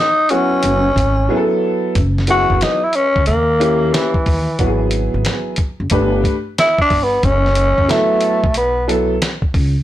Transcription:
0.00 0.32 D#4 loud
0.29 0.81 F#3 medium
0.29 0.81 B3 medium
0.29 1.62 C#4 loud
0.29 0.81 E4 medium
0.29 0.81 F#4 medium
0.29 closed hi-hat medium
0.63 0.94 F#1 loud
0.63 closed hi-hat medium
0.96 1.27 G#1 medium
0.96 kick medium
0.96 closed hi-hat medium
1.29 1.95 F#3 medium
1.29 1.96 B3 medium
1.29 1.96 E4 medium
1.29 1.38 G#4 medium
1.36 1.99 A4 medium
1.95 2.46 F#1 loud
1.95 kick medium
1.95 closed hi-hat medium
2.18 snare soft
2.27 2.78 F#3 medium
2.27 2.78 B3 medium
2.27 2.79 E4 medium
2.27 2.64 F#4 loud
2.27 2.79 G#4 medium
2.27 closed hi-hat medium
2.50 2.61 F#1 medium
2.50 kick medium
2.61 2.85 D#4 loud
2.61 snare loud
2.61 closed hi-hat medium
2.84 2.97 E4 medium
2.93 3.27 C#4 loud
2.93 closed hi-hat medium
3.16 3.27 C#2 medium
3.16 kick medium
3.26 3.90 D#2 medium
3.26 3.95 A#3 medium
3.26 closed hi-hat medium
3.59 4.10 A#3 medium
3.59 4.10 C#4 medium
3.59 4.10 E4 medium
3.59 4.10 G4 medium
3.59 closed hi-hat medium
3.93 4.92 E3 medium
3.93 snare loud
3.93 closed hi-hat medium
4.14 kick medium
4.26 4.46 D#2 medium
4.26 kick loud
4.26 open hi-hat medium
4.59 5.10 G#1 medium
4.59 5.53 F#3 medium
4.59 5.54 B3 medium
4.59 5.54 E4 medium
4.59 4.68 F#4 medium
4.59 kick loud
4.59 closed hi-hat medium
4.66 5.57 G#4 medium
4.91 closed hi-hat medium
5.14 5.25 G#1 medium
5.25 snare loud
5.25 closed hi-hat medium
5.56 kick medium
5.56 closed hi-hat medium
5.80 5.90 F#1 medium
5.90 6.22 G1 loud
5.90 6.33 A3 medium
5.90 6.33 D4 medium
5.90 6.33 G4 medium
5.90 6.33 B4 medium
5.90 kick loud
5.90 closed hi-hat medium
6.24 kick medium
6.24 closed hi-hat medium
6.58 6.79 E4 loud
6.58 snare loud
6.58 closed hi-hat medium
6.79 7.05 D4 loud
6.79 kick medium
6.90 7.21 G1 medium
6.90 kick loud
6.90 open hi-hat medium
7.03 7.26 B3 medium
7.23 7.74 F#1 loud
7.23 7.92 C#4 loud
7.23 kick loud
7.23 closed hi-hat medium
7.46 snare soft
7.55 closed hi-hat medium
7.78 7.89 F#1 medium
7.78 kick medium
7.88 8.39 F#3 medium
7.88 8.56 A3 medium
7.88 8.39 B3 medium
7.88 8.39 E4 medium
7.88 8.39 A4 medium
7.88 snare loud
7.88 closed hi-hat medium
8.21 closed hi-hat medium
8.44 9.17 B1 medium
8.44 kick medium
8.54 8.87 B3 medium
8.54 closed hi-hat medium
8.88 9.14 F#3 medium
8.88 9.14 B3 medium
8.88 9.14 E4 medium
8.88 9.14 A4 medium
8.88 closed hi-hat medium
9.22 snare loud
9.22 closed hi-hat medium
9.42 kick medium
9.54 9.74 C#2 medium
9.54 kick loud
9.54 open hi-hat medium

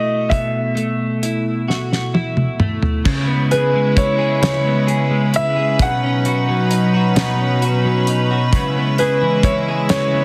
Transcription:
0.00 0.28 B2 medium
0.00 0.74 A3 soft
0.00 1.22 E4 medium
0.00 1.67 F#4 medium
0.00 0.32 D#5 medium
0.29 3.04 B2 medium
0.29 2.55 E5 medium
0.29 kick medium
0.29 closed hi-hat medium
0.75 2.58 A3 soft
0.75 closed hi-hat soft
1.23 2.14 E4 soft
1.23 closed hi-hat medium
1.68 3.14 F#4 soft
1.68 snare soft
1.93 snare soft
2.14 3.96 E4 soft
2.14 high tom medium
2.37 mid tom medium
2.60 3.14 A3 soft
2.60 mid tom medium
2.83 floor tom medium
3.05 4.41 C#3 medium
3.05 5.76 G#3 medium
3.05 10.25 C#4 medium
3.05 5.77 E4 medium
3.05 10.25 B4 medium
3.05 kick medium
3.05 crash medium
3.27 4.65 B3 medium
3.51 4.17 G#4 medium
3.51 3.98 B4 medium
3.51 closed hi-hat soft
3.73 5.09 G#3 medium
3.96 5.32 E4 medium
3.96 4.40 C#5 medium
3.96 kick medium
3.96 closed hi-hat medium
4.19 4.86 G#4 medium
4.42 5.79 C#3 medium
4.42 5.36 C#5 medium
4.42 snare loud
4.42 closed hi-hat medium
4.65 6.03 B3 medium
4.87 5.55 G#4 medium
4.87 closed hi-hat soft
5.11 5.88 G#3 medium
5.33 5.88 E4 medium
5.33 5.82 E5 loud
5.33 closed hi-hat medium
5.56 5.88 G#4 medium
5.79 7.14 B2 medium
5.79 8.50 F#3 medium
5.79 8.50 D#4 medium
5.79 8.04 F#5 medium
5.79 kick loud
5.79 closed hi-hat medium
6.03 7.38 C#4 medium
6.25 6.93 F#4 medium
6.25 closed hi-hat soft
6.48 7.84 F#3 medium
6.71 8.06 D#4 medium
6.71 closed hi-hat medium
6.94 7.61 F#4 medium
7.15 8.52 B2 medium
7.15 snare loud
7.15 closed hi-hat medium
7.39 8.76 C#4 medium
7.62 8.30 F#4 medium
7.62 closed hi-hat soft
7.85 8.62 F#3 medium
8.07 8.62 D#4 medium
8.07 closed hi-hat medium
8.31 8.62 F#4 medium
8.51 9.89 C#3 medium
8.51 10.25 G#3 medium
8.51 10.25 E4 medium
8.51 kick medium
8.51 closed hi-hat medium
8.76 10.12 B3 medium
8.98 9.67 G#4 medium
8.98 9.45 B4 medium
8.98 closed hi-hat soft
9.22 10.25 E3 medium
9.43 10.25 E4 medium
9.43 9.54 C#5 medium
9.43 kick medium
9.43 closed hi-hat medium
9.69 10.25 G#4 medium
9.89 10.25 C#3 medium
9.89 10.25 C#5 medium
9.89 snare loud
9.89 closed hi-hat medium
10.14 10.25 B3 medium

